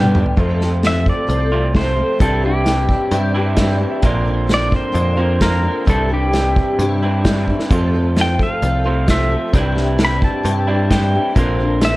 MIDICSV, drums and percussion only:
0, 0, Header, 1, 2, 480
1, 0, Start_track
1, 0, Tempo, 458015
1, 392, Time_signature, 4, 2, 24, 8
1, 12540, End_track
2, 0, Start_track
2, 0, Title_t, "Drums"
2, 30, Note_on_c, 9, 48, 59
2, 135, Note_off_c, 9, 48, 0
2, 155, Note_on_c, 9, 45, 86
2, 260, Note_off_c, 9, 45, 0
2, 272, Note_on_c, 9, 43, 88
2, 377, Note_off_c, 9, 43, 0
2, 385, Note_on_c, 9, 42, 49
2, 391, Note_on_c, 9, 36, 90
2, 490, Note_off_c, 9, 42, 0
2, 496, Note_off_c, 9, 36, 0
2, 638, Note_on_c, 9, 38, 29
2, 743, Note_off_c, 9, 38, 0
2, 870, Note_on_c, 9, 42, 46
2, 874, Note_on_c, 9, 38, 86
2, 975, Note_off_c, 9, 42, 0
2, 978, Note_off_c, 9, 38, 0
2, 1113, Note_on_c, 9, 36, 70
2, 1217, Note_off_c, 9, 36, 0
2, 1356, Note_on_c, 9, 42, 49
2, 1460, Note_off_c, 9, 42, 0
2, 1828, Note_on_c, 9, 42, 52
2, 1830, Note_on_c, 9, 36, 79
2, 1831, Note_on_c, 9, 38, 98
2, 1933, Note_off_c, 9, 42, 0
2, 1935, Note_off_c, 9, 36, 0
2, 1936, Note_off_c, 9, 38, 0
2, 2309, Note_on_c, 9, 42, 58
2, 2310, Note_on_c, 9, 36, 94
2, 2414, Note_off_c, 9, 42, 0
2, 2415, Note_off_c, 9, 36, 0
2, 2786, Note_on_c, 9, 42, 53
2, 2789, Note_on_c, 9, 38, 85
2, 2891, Note_off_c, 9, 42, 0
2, 2894, Note_off_c, 9, 38, 0
2, 3026, Note_on_c, 9, 36, 77
2, 3131, Note_off_c, 9, 36, 0
2, 3261, Note_on_c, 9, 42, 57
2, 3366, Note_off_c, 9, 42, 0
2, 3736, Note_on_c, 9, 42, 52
2, 3739, Note_on_c, 9, 38, 95
2, 3743, Note_on_c, 9, 36, 76
2, 3841, Note_off_c, 9, 42, 0
2, 3844, Note_off_c, 9, 38, 0
2, 3847, Note_off_c, 9, 36, 0
2, 4218, Note_on_c, 9, 42, 52
2, 4224, Note_on_c, 9, 36, 94
2, 4322, Note_off_c, 9, 42, 0
2, 4329, Note_off_c, 9, 36, 0
2, 4708, Note_on_c, 9, 42, 53
2, 4711, Note_on_c, 9, 38, 91
2, 4812, Note_off_c, 9, 42, 0
2, 4816, Note_off_c, 9, 38, 0
2, 4949, Note_on_c, 9, 36, 76
2, 5054, Note_off_c, 9, 36, 0
2, 5187, Note_on_c, 9, 42, 51
2, 5292, Note_off_c, 9, 42, 0
2, 5670, Note_on_c, 9, 42, 55
2, 5671, Note_on_c, 9, 36, 75
2, 5673, Note_on_c, 9, 38, 93
2, 5775, Note_off_c, 9, 42, 0
2, 5776, Note_off_c, 9, 36, 0
2, 5778, Note_off_c, 9, 38, 0
2, 6154, Note_on_c, 9, 42, 54
2, 6155, Note_on_c, 9, 36, 93
2, 6259, Note_off_c, 9, 42, 0
2, 6260, Note_off_c, 9, 36, 0
2, 6635, Note_on_c, 9, 42, 54
2, 6638, Note_on_c, 9, 38, 89
2, 6740, Note_off_c, 9, 42, 0
2, 6743, Note_off_c, 9, 38, 0
2, 6876, Note_on_c, 9, 36, 73
2, 6981, Note_off_c, 9, 36, 0
2, 7118, Note_on_c, 9, 42, 56
2, 7223, Note_off_c, 9, 42, 0
2, 7597, Note_on_c, 9, 42, 58
2, 7598, Note_on_c, 9, 36, 75
2, 7600, Note_on_c, 9, 38, 98
2, 7702, Note_off_c, 9, 36, 0
2, 7702, Note_off_c, 9, 42, 0
2, 7705, Note_off_c, 9, 38, 0
2, 7838, Note_on_c, 9, 36, 50
2, 7943, Note_off_c, 9, 36, 0
2, 7961, Note_on_c, 9, 38, 69
2, 8066, Note_off_c, 9, 38, 0
2, 8078, Note_on_c, 9, 36, 102
2, 8078, Note_on_c, 9, 42, 55
2, 8183, Note_off_c, 9, 36, 0
2, 8183, Note_off_c, 9, 42, 0
2, 8557, Note_on_c, 9, 42, 50
2, 8560, Note_on_c, 9, 38, 90
2, 8662, Note_off_c, 9, 42, 0
2, 8665, Note_off_c, 9, 38, 0
2, 8798, Note_on_c, 9, 36, 76
2, 8902, Note_off_c, 9, 36, 0
2, 9036, Note_on_c, 9, 42, 51
2, 9141, Note_off_c, 9, 42, 0
2, 9515, Note_on_c, 9, 42, 57
2, 9517, Note_on_c, 9, 36, 73
2, 9518, Note_on_c, 9, 38, 99
2, 9620, Note_off_c, 9, 42, 0
2, 9621, Note_off_c, 9, 36, 0
2, 9623, Note_off_c, 9, 38, 0
2, 9993, Note_on_c, 9, 42, 54
2, 9994, Note_on_c, 9, 36, 100
2, 10097, Note_off_c, 9, 42, 0
2, 10099, Note_off_c, 9, 36, 0
2, 10236, Note_on_c, 9, 38, 30
2, 10341, Note_off_c, 9, 38, 0
2, 10465, Note_on_c, 9, 42, 56
2, 10468, Note_on_c, 9, 38, 90
2, 10570, Note_off_c, 9, 42, 0
2, 10573, Note_off_c, 9, 38, 0
2, 10710, Note_on_c, 9, 36, 72
2, 10815, Note_off_c, 9, 36, 0
2, 10952, Note_on_c, 9, 42, 58
2, 11057, Note_off_c, 9, 42, 0
2, 11429, Note_on_c, 9, 36, 81
2, 11430, Note_on_c, 9, 42, 61
2, 11433, Note_on_c, 9, 38, 99
2, 11534, Note_off_c, 9, 36, 0
2, 11534, Note_off_c, 9, 42, 0
2, 11538, Note_off_c, 9, 38, 0
2, 11906, Note_on_c, 9, 36, 98
2, 11907, Note_on_c, 9, 42, 57
2, 12011, Note_off_c, 9, 36, 0
2, 12011, Note_off_c, 9, 42, 0
2, 12381, Note_on_c, 9, 42, 53
2, 12384, Note_on_c, 9, 38, 93
2, 12486, Note_off_c, 9, 42, 0
2, 12489, Note_off_c, 9, 38, 0
2, 12540, End_track
0, 0, End_of_file